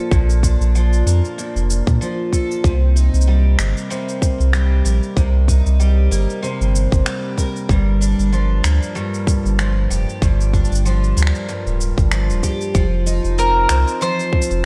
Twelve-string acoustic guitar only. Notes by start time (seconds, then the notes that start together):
Already playing: A#2 F3 A#3 D4 A4
0.12 A#2
0.43 D4
0.75 F3
1.07 A#3
1.38 A#2
2.01 F3
2.33 A4
2.64 C3
2.96 D#4
3.27 G3
3.59 A#3
3.90 C3
4.53 G3
4.85 A#4
5.17 C3
5.49 D#4
5.80 G3
6.11 A#3
6.42 C3
7.06 G3
7.37 A#4
7.69 G2
8.01 D4
8.32 F3
8.64 A#3
8.95 G2
9.59 F3
9.90 G4
10.22 G2
10.54 D4
10.85 F3
11.17 A#3
11.49 G2
12.12 F3
12.44 G4
12.75 F3
13.06 D#4
13.38 C4
13.69 C4
14.01 F3